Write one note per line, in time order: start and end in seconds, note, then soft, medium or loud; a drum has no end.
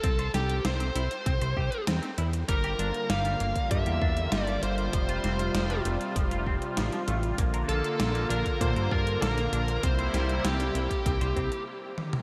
0.00 0.30 C2 medium
0.00 0.08 C4 loud
0.00 0.30 A4 loud
0.00 kick loud
0.00 closed hi-hat medium
0.19 0.27 C5 medium
0.19 closed hi-hat soft
0.34 0.60 C2 loud
0.34 0.42 G4 medium
0.34 0.63 G4 medium
0.34 snare medium
0.34 closed hi-hat medium
0.50 closed hi-hat soft
0.65 0.91 C2 loud
0.65 0.76 C4 medium
0.65 1.83 C5 loud
0.65 snare loud
0.65 closed hi-hat medium
0.80 0.88 C4 medium
0.80 closed hi-hat soft
0.96 1.09 C2 loud
0.96 1.03 E4 medium
0.96 closed hi-hat medium
1.11 closed hi-hat soft
1.26 1.39 C2 medium
1.26 1.31 C4 medium
1.26 kick loud
1.26 closed hi-hat medium
1.41 1.55 C2 loud
1.41 1.49 C5 medium
1.41 closed hi-hat soft
1.57 1.70 C2 loud
1.57 1.65 G4 medium
1.57 kick medium
1.72 closed hi-hat soft
1.87 2.00 E2 medium
1.87 1.99 C4 medium
1.87 snare loud
1.87 closed hi-hat medium
2.03 2.10 C4 medium
2.03 closed hi-hat soft
2.18 2.44 E2 loud
2.18 2.26 E4 medium
2.18 closed hi-hat medium
2.33 closed hi-hat soft
2.48 2.75 G1 loud
2.48 4.91 D3 medium
2.48 7.34 G3 medium
2.48 2.53 G3 loud
2.48 4.91 A#3 medium
2.48 9.79 F4 medium
2.48 3.12 A#4 loud
2.48 kick loud
2.48 closed hi-hat medium
2.64 2.72 G4 medium
2.64 closed hi-hat soft
2.79 2.92 G1 loud
2.79 2.87 D4 medium
2.79 closed hi-hat medium
2.94 closed hi-hat soft
3.10 3.36 G1 medium
3.10 3.21 G3 medium
3.10 3.71 F5 loud
3.10 snare loud
3.10 closed hi-hat medium
3.25 3.33 G3 medium
3.25 closed hi-hat soft
3.40 3.54 G1 medium
3.40 3.48 A#3 medium
3.40 closed hi-hat medium
3.56 kick medium
3.56 closed hi-hat soft
3.71 3.84 G2 loud
3.71 3.76 G3 loud
3.71 4.34 E5 loud
3.71 kick loud
3.71 closed hi-hat medium
3.86 3.99 E2 medium
3.86 3.94 G4 medium
3.86 closed hi-hat soft
4.02 4.28 E2 medium
4.02 4.09 D4 medium
4.02 kick loud
4.17 closed hi-hat soft
4.32 4.58 G1 loud
4.32 4.44 G3 medium
4.32 4.63 D5 loud
4.32 snare loud
4.32 closed hi-hat medium
4.47 4.55 G3 medium
4.47 closed hi-hat soft
4.63 4.89 G1 medium
4.63 4.71 A#3 medium
4.63 5.81 C5 medium
4.63 closed hi-hat medium
4.78 closed hi-hat soft
4.93 5.20 F1 medium
4.93 7.36 C3 medium
4.93 4.98 F3 loud
4.93 kick loud
4.93 closed hi-hat medium
5.09 5.17 F4 medium
5.09 closed hi-hat soft
5.24 5.50 F1 loud
5.24 5.32 C4 medium
5.24 snare medium
5.24 closed hi-hat medium
5.39 closed hi-hat soft
5.55 5.81 F1 loud
5.55 5.66 F3 medium
5.55 snare loud
5.55 closed hi-hat medium
5.70 5.78 F3 medium
5.70 closed hi-hat soft
5.85 5.98 F1 loud
5.85 5.93 A3 medium
5.85 closed hi-hat medium
6.01 closed hi-hat soft
6.16 6.29 F1 medium
6.16 6.21 F3 loud
6.16 kick loud
6.16 closed hi-hat medium
6.31 6.44 F1 loud
6.31 6.39 F4 medium
6.31 closed hi-hat soft
6.46 6.60 F1 loud
6.46 6.54 C4 medium
6.46 kick medium
6.62 closed hi-hat soft
6.77 6.90 A1 medium
6.77 6.89 F3 medium
6.77 snare loud
6.77 closed hi-hat medium
6.92 7.00 F3 medium
6.92 closed hi-hat soft
7.08 7.34 A1 loud
7.08 7.16 A3 medium
7.08 closed hi-hat medium
7.23 closed hi-hat soft
7.38 7.65 A#1 loud
7.38 9.81 D3 medium
7.38 11.63 A#3 medium
7.38 7.43 A#3 loud
7.38 kick loud
7.38 closed hi-hat medium
7.54 7.61 A#4 medium
7.54 closed hi-hat soft
7.69 7.82 A#1 medium
7.69 7.77 F4 medium
7.69 8.26 A4 loud
7.69 closed hi-hat medium
7.84 closed hi-hat soft
8.00 8.26 A#1 medium
8.00 8.11 A#3 medium
8.00 snare loud
8.00 closed hi-hat medium
8.15 8.23 A#3 medium
8.15 closed hi-hat soft
8.30 8.43 A#1 medium
8.30 8.38 D4 medium
8.30 8.62 A#4 loud
8.30 closed hi-hat medium
8.46 kick medium
8.46 closed hi-hat soft
8.61 8.74 A#2 loud
8.61 8.65 A#3 loud
8.61 8.93 C5 loud
8.61 kick loud
8.61 closed hi-hat medium
8.76 8.89 G2 medium
8.76 8.84 A#4 medium
8.76 closed hi-hat soft
8.91 9.18 G2 medium
8.91 8.99 F4 medium
8.91 9.21 A#4 loud
8.91 kick loud
9.07 closed hi-hat soft
9.22 9.48 A#1 loud
9.22 9.34 A#3 medium
9.22 9.85 A#4 loud
9.22 snare loud
9.22 closed hi-hat medium
9.38 9.45 A#3 medium
9.38 closed hi-hat soft
9.53 9.79 A#1 medium
9.53 9.60 D4 medium
9.53 closed hi-hat medium
9.68 closed hi-hat soft
9.83 10.09 C2 medium
9.83 11.65 C3 medium
9.83 11.65 G3 medium
9.83 9.88 C4 loud
9.83 11.65 E4 medium
9.83 10.46 C5 loud
9.83 kick loud
9.83 closed hi-hat loud
9.99 10.06 C5 medium
9.99 closed hi-hat soft
10.14 10.40 C2 loud
10.14 10.22 G4 medium
10.14 snare medium
10.14 closed hi-hat medium
10.29 closed hi-hat soft
10.45 10.71 C2 loud
10.45 10.56 C4 medium
10.45 11.63 G4 medium
10.45 snare loud
10.45 closed hi-hat loud
10.60 10.68 C4 medium
10.60 closed hi-hat soft
10.75 10.88 C2 loud
10.75 10.83 E4 medium
10.75 closed hi-hat medium
10.90 kick medium
10.90 closed hi-hat soft
11.06 11.19 C2 medium
11.06 11.10 C4 loud
11.06 kick loud
11.06 closed hi-hat medium
11.21 11.34 C2 loud
11.21 11.29 C5 medium
11.21 closed hi-hat soft
11.36 11.49 C2 loud
11.36 11.48 C4 medium
11.36 kick medium
11.36 closed hi-hat soft
11.52 closed hi-hat soft
11.98 high tom medium
12.13 mid tom medium